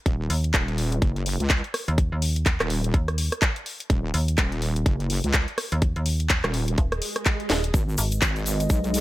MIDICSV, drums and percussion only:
0, 0, Header, 1, 2, 480
1, 0, Start_track
1, 0, Key_signature, 5, "minor"
1, 0, Tempo, 480000
1, 59, Time_signature, 4, 2, 24, 8
1, 9005, End_track
2, 0, Start_track
2, 0, Title_t, "Drums"
2, 59, Note_on_c, 9, 36, 125
2, 60, Note_on_c, 9, 42, 66
2, 159, Note_off_c, 9, 36, 0
2, 160, Note_off_c, 9, 42, 0
2, 300, Note_on_c, 9, 46, 106
2, 400, Note_off_c, 9, 46, 0
2, 442, Note_on_c, 9, 42, 53
2, 537, Note_on_c, 9, 39, 115
2, 539, Note_on_c, 9, 36, 115
2, 540, Note_off_c, 9, 42, 0
2, 540, Note_on_c, 9, 42, 67
2, 637, Note_off_c, 9, 39, 0
2, 639, Note_off_c, 9, 36, 0
2, 640, Note_off_c, 9, 42, 0
2, 684, Note_on_c, 9, 42, 34
2, 780, Note_on_c, 9, 46, 107
2, 784, Note_off_c, 9, 42, 0
2, 880, Note_off_c, 9, 46, 0
2, 923, Note_on_c, 9, 42, 49
2, 1020, Note_off_c, 9, 42, 0
2, 1020, Note_on_c, 9, 36, 120
2, 1020, Note_on_c, 9, 42, 67
2, 1120, Note_off_c, 9, 36, 0
2, 1120, Note_off_c, 9, 42, 0
2, 1164, Note_on_c, 9, 42, 34
2, 1260, Note_on_c, 9, 46, 102
2, 1264, Note_off_c, 9, 42, 0
2, 1360, Note_off_c, 9, 46, 0
2, 1402, Note_on_c, 9, 42, 51
2, 1496, Note_on_c, 9, 39, 109
2, 1500, Note_off_c, 9, 42, 0
2, 1500, Note_on_c, 9, 36, 120
2, 1500, Note_on_c, 9, 42, 66
2, 1596, Note_off_c, 9, 39, 0
2, 1600, Note_off_c, 9, 36, 0
2, 1600, Note_off_c, 9, 42, 0
2, 1642, Note_on_c, 9, 42, 36
2, 1740, Note_on_c, 9, 37, 65
2, 1740, Note_on_c, 9, 46, 105
2, 1742, Note_off_c, 9, 42, 0
2, 1840, Note_off_c, 9, 37, 0
2, 1840, Note_off_c, 9, 46, 0
2, 1882, Note_on_c, 9, 42, 49
2, 1980, Note_on_c, 9, 36, 125
2, 1981, Note_off_c, 9, 42, 0
2, 1981, Note_on_c, 9, 42, 69
2, 2080, Note_off_c, 9, 36, 0
2, 2081, Note_off_c, 9, 42, 0
2, 2221, Note_on_c, 9, 46, 105
2, 2321, Note_off_c, 9, 46, 0
2, 2362, Note_on_c, 9, 42, 55
2, 2457, Note_on_c, 9, 39, 115
2, 2459, Note_on_c, 9, 36, 111
2, 2461, Note_off_c, 9, 42, 0
2, 2461, Note_on_c, 9, 42, 64
2, 2557, Note_off_c, 9, 39, 0
2, 2559, Note_off_c, 9, 36, 0
2, 2561, Note_off_c, 9, 42, 0
2, 2600, Note_on_c, 9, 39, 36
2, 2604, Note_on_c, 9, 37, 88
2, 2604, Note_on_c, 9, 42, 38
2, 2700, Note_off_c, 9, 39, 0
2, 2702, Note_on_c, 9, 46, 104
2, 2704, Note_off_c, 9, 37, 0
2, 2704, Note_off_c, 9, 42, 0
2, 2802, Note_off_c, 9, 46, 0
2, 2844, Note_on_c, 9, 42, 53
2, 2939, Note_on_c, 9, 36, 110
2, 2940, Note_off_c, 9, 42, 0
2, 2940, Note_on_c, 9, 42, 65
2, 3039, Note_off_c, 9, 36, 0
2, 3040, Note_off_c, 9, 42, 0
2, 3082, Note_on_c, 9, 37, 62
2, 3082, Note_on_c, 9, 42, 35
2, 3180, Note_on_c, 9, 46, 98
2, 3182, Note_off_c, 9, 37, 0
2, 3182, Note_off_c, 9, 42, 0
2, 3280, Note_off_c, 9, 46, 0
2, 3323, Note_on_c, 9, 37, 62
2, 3323, Note_on_c, 9, 42, 54
2, 3417, Note_on_c, 9, 39, 109
2, 3419, Note_on_c, 9, 36, 120
2, 3421, Note_off_c, 9, 42, 0
2, 3421, Note_on_c, 9, 42, 67
2, 3423, Note_off_c, 9, 37, 0
2, 3517, Note_off_c, 9, 39, 0
2, 3519, Note_off_c, 9, 36, 0
2, 3521, Note_off_c, 9, 42, 0
2, 3562, Note_on_c, 9, 42, 39
2, 3661, Note_on_c, 9, 46, 98
2, 3662, Note_off_c, 9, 42, 0
2, 3761, Note_off_c, 9, 46, 0
2, 3803, Note_on_c, 9, 42, 52
2, 3899, Note_on_c, 9, 36, 118
2, 3901, Note_off_c, 9, 42, 0
2, 3901, Note_on_c, 9, 42, 73
2, 3999, Note_off_c, 9, 36, 0
2, 4000, Note_off_c, 9, 42, 0
2, 4139, Note_on_c, 9, 46, 106
2, 4239, Note_off_c, 9, 46, 0
2, 4283, Note_on_c, 9, 42, 58
2, 4376, Note_on_c, 9, 39, 124
2, 4379, Note_on_c, 9, 36, 113
2, 4380, Note_off_c, 9, 42, 0
2, 4380, Note_on_c, 9, 42, 67
2, 4476, Note_off_c, 9, 39, 0
2, 4479, Note_off_c, 9, 36, 0
2, 4480, Note_off_c, 9, 42, 0
2, 4522, Note_on_c, 9, 42, 39
2, 4619, Note_on_c, 9, 46, 100
2, 4622, Note_off_c, 9, 42, 0
2, 4719, Note_off_c, 9, 46, 0
2, 4763, Note_on_c, 9, 42, 51
2, 4859, Note_on_c, 9, 36, 119
2, 4861, Note_off_c, 9, 42, 0
2, 4861, Note_on_c, 9, 42, 68
2, 4959, Note_off_c, 9, 36, 0
2, 4961, Note_off_c, 9, 42, 0
2, 5002, Note_on_c, 9, 42, 38
2, 5099, Note_on_c, 9, 46, 96
2, 5102, Note_off_c, 9, 42, 0
2, 5199, Note_off_c, 9, 46, 0
2, 5240, Note_on_c, 9, 42, 56
2, 5334, Note_on_c, 9, 39, 119
2, 5338, Note_off_c, 9, 42, 0
2, 5338, Note_on_c, 9, 42, 68
2, 5340, Note_on_c, 9, 36, 118
2, 5434, Note_off_c, 9, 39, 0
2, 5438, Note_off_c, 9, 42, 0
2, 5440, Note_off_c, 9, 36, 0
2, 5480, Note_on_c, 9, 42, 40
2, 5578, Note_on_c, 9, 37, 71
2, 5578, Note_on_c, 9, 46, 103
2, 5580, Note_off_c, 9, 42, 0
2, 5678, Note_off_c, 9, 37, 0
2, 5678, Note_off_c, 9, 46, 0
2, 5720, Note_on_c, 9, 42, 55
2, 5818, Note_off_c, 9, 42, 0
2, 5818, Note_on_c, 9, 42, 74
2, 5820, Note_on_c, 9, 36, 122
2, 5918, Note_off_c, 9, 42, 0
2, 5920, Note_off_c, 9, 36, 0
2, 5961, Note_on_c, 9, 42, 38
2, 6057, Note_on_c, 9, 46, 104
2, 6061, Note_off_c, 9, 42, 0
2, 6157, Note_off_c, 9, 46, 0
2, 6200, Note_on_c, 9, 42, 58
2, 6294, Note_on_c, 9, 39, 123
2, 6297, Note_off_c, 9, 42, 0
2, 6297, Note_on_c, 9, 42, 72
2, 6300, Note_on_c, 9, 36, 111
2, 6393, Note_off_c, 9, 39, 0
2, 6397, Note_off_c, 9, 42, 0
2, 6400, Note_off_c, 9, 36, 0
2, 6437, Note_on_c, 9, 39, 36
2, 6440, Note_on_c, 9, 37, 87
2, 6440, Note_on_c, 9, 42, 37
2, 6537, Note_off_c, 9, 39, 0
2, 6538, Note_on_c, 9, 46, 97
2, 6540, Note_off_c, 9, 37, 0
2, 6540, Note_off_c, 9, 42, 0
2, 6638, Note_off_c, 9, 46, 0
2, 6680, Note_on_c, 9, 42, 57
2, 6778, Note_off_c, 9, 42, 0
2, 6778, Note_on_c, 9, 42, 69
2, 6780, Note_on_c, 9, 36, 113
2, 6878, Note_off_c, 9, 42, 0
2, 6880, Note_off_c, 9, 36, 0
2, 6921, Note_on_c, 9, 37, 64
2, 6921, Note_on_c, 9, 42, 37
2, 7017, Note_on_c, 9, 46, 98
2, 7021, Note_off_c, 9, 37, 0
2, 7021, Note_off_c, 9, 42, 0
2, 7117, Note_off_c, 9, 46, 0
2, 7159, Note_on_c, 9, 37, 61
2, 7159, Note_on_c, 9, 42, 56
2, 7254, Note_on_c, 9, 39, 117
2, 7258, Note_off_c, 9, 42, 0
2, 7258, Note_on_c, 9, 42, 69
2, 7259, Note_off_c, 9, 37, 0
2, 7260, Note_on_c, 9, 36, 113
2, 7354, Note_off_c, 9, 39, 0
2, 7358, Note_off_c, 9, 42, 0
2, 7360, Note_off_c, 9, 36, 0
2, 7400, Note_on_c, 9, 42, 39
2, 7498, Note_on_c, 9, 38, 95
2, 7498, Note_on_c, 9, 46, 105
2, 7500, Note_off_c, 9, 42, 0
2, 7598, Note_off_c, 9, 38, 0
2, 7598, Note_off_c, 9, 46, 0
2, 7640, Note_on_c, 9, 42, 57
2, 7738, Note_off_c, 9, 42, 0
2, 7738, Note_on_c, 9, 42, 71
2, 7739, Note_on_c, 9, 36, 127
2, 7745, Note_on_c, 9, 82, 53
2, 7838, Note_off_c, 9, 42, 0
2, 7839, Note_off_c, 9, 36, 0
2, 7845, Note_off_c, 9, 82, 0
2, 7889, Note_on_c, 9, 82, 27
2, 7977, Note_off_c, 9, 82, 0
2, 7977, Note_on_c, 9, 82, 93
2, 7978, Note_on_c, 9, 46, 109
2, 8077, Note_off_c, 9, 82, 0
2, 8078, Note_off_c, 9, 46, 0
2, 8114, Note_on_c, 9, 82, 43
2, 8121, Note_on_c, 9, 42, 57
2, 8214, Note_off_c, 9, 82, 0
2, 8215, Note_on_c, 9, 39, 126
2, 8218, Note_on_c, 9, 82, 56
2, 8219, Note_off_c, 9, 42, 0
2, 8219, Note_on_c, 9, 36, 119
2, 8219, Note_on_c, 9, 42, 69
2, 8315, Note_off_c, 9, 39, 0
2, 8318, Note_off_c, 9, 82, 0
2, 8319, Note_off_c, 9, 36, 0
2, 8319, Note_off_c, 9, 42, 0
2, 8360, Note_on_c, 9, 82, 26
2, 8361, Note_on_c, 9, 42, 37
2, 8459, Note_on_c, 9, 46, 108
2, 8460, Note_off_c, 9, 82, 0
2, 8461, Note_off_c, 9, 42, 0
2, 8466, Note_on_c, 9, 82, 97
2, 8559, Note_off_c, 9, 46, 0
2, 8566, Note_off_c, 9, 82, 0
2, 8601, Note_on_c, 9, 82, 36
2, 8602, Note_on_c, 9, 42, 54
2, 8694, Note_off_c, 9, 82, 0
2, 8694, Note_on_c, 9, 82, 57
2, 8700, Note_off_c, 9, 42, 0
2, 8700, Note_on_c, 9, 36, 122
2, 8700, Note_on_c, 9, 42, 67
2, 8794, Note_off_c, 9, 82, 0
2, 8800, Note_off_c, 9, 36, 0
2, 8800, Note_off_c, 9, 42, 0
2, 8839, Note_on_c, 9, 82, 28
2, 8842, Note_on_c, 9, 42, 36
2, 8939, Note_off_c, 9, 82, 0
2, 8940, Note_on_c, 9, 46, 106
2, 8942, Note_off_c, 9, 42, 0
2, 8944, Note_on_c, 9, 82, 82
2, 9005, Note_off_c, 9, 46, 0
2, 9005, Note_off_c, 9, 82, 0
2, 9005, End_track
0, 0, End_of_file